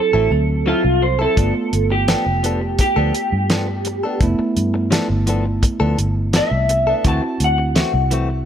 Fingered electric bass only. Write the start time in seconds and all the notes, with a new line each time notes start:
0.14 A1
0.31 D2
0.85 C2
1.37 G1
1.73 G1
2.26 F1
2.97 D2
3.32 G2
4.21 F1
4.57 G2
5.10 G1
5.81 D2
5.98 G1
6.51 C2
7.05 D2
7.40 D2
7.94 C2